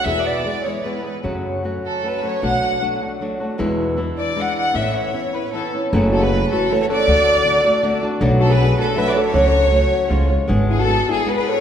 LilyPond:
<<
  \new Staff \with { instrumentName = "Violin section" } { \time 3/4 \key a \major \tempo 4 = 155 e''8 d''4 cis''8 b'8. r16 | r4. a'8 b'8 cis''8 | fis''4 r2 | r4. d''8 fis''8 fis''8 |
e''8 cis''4 b'8 a'8. r16 | \key fis \minor r8 a'16 b'8. a'8 cis''16 cis''16 d''8~ | d''2~ d''8 r8 | r8 a'16 b'8. a'8 e''16 d''16 cis''8~ |
cis''2~ cis''8 r8 | r8 gis'16 a'8. gis'8 b'16 b'16 cis''8 | }
  \new Staff \with { instrumentName = "Tine electric piano" } { \time 3/4 \key a \major r2. | r2. | r2. | r2. |
r2. | \key fis \minor r8 fis'16 gis'8. fis'8 a'16 a'16 a'8~ | a'2~ a'8 r8 | r8 fis'16 gis'8. fis'8 b'16 b'16 a'8~ |
a'2~ a'8 r8 | r8 e'16 fis'8. e'8 gis'16 gis'16 a'8 | }
  \new Staff \with { instrumentName = "Nylon-string guitar" } { \time 3/4 \key a \major <e, b, e gis b gis'>4 <e gis b gis'>8 <e gis b gis'>8 <e gis b gis'>8 <e gis b gis'>8 | <fis, cis fis a cis' fis'>4 <fis a cis' fis'>4 <fis a cis' fis'>8 <fis a cis' fis'>8 | <b, fis a d' fis'>4 <fis a d' fis'>8 <a d' fis'>8 <fis a d' fis'>8 <a d' fis'>8 | <e, b, e gis d' e'>4 <e gis d' e'>4 <e gis d' e'>4 |
<a, e b cis' e'>4 <e b cis' e'>8 <b cis' e'>8 <e b cis' e'>8 <b cis' e'>8 | \key fis \minor <fis, cis e a cis' fis'>4 <e a cis' fis'>8 <e a cis' fis'>8 <e a cis' fis'>8 <e a cis' fis'>8 | <d a d' fis'>4 <d a d' fis'>8 <a d' fis'>8 <d a d' fis'>8 <a d' fis'>8 | <b, fis a d' fis'>4 <fis a d' fis'>8 <a d' fis'>8 <fis a d' fis'>8 <a d' fis'>8 |
<cis fis a cis' fis'>4 <fis a cis' fis'>4 <eis gis cis' eis'>8 <gis cis' eis'>8 | <gis b d' gis'>4 <gis b d' gis'>8 <b d' gis'>8 <gis b d' gis'>4 | }
  \new Staff \with { instrumentName = "Upright bass" } { \clef bass \time 3/4 \key a \major e,8 r2 r8 | fis,2 r4 | b,,8 r2 r8 | e,2 r4 |
a,,8 r2 r8 | \key fis \minor fis,,2 r4 | d,2 r4 | b,,2 r4 |
cis,2 cis,4 | gis,,2 r4 | }
>>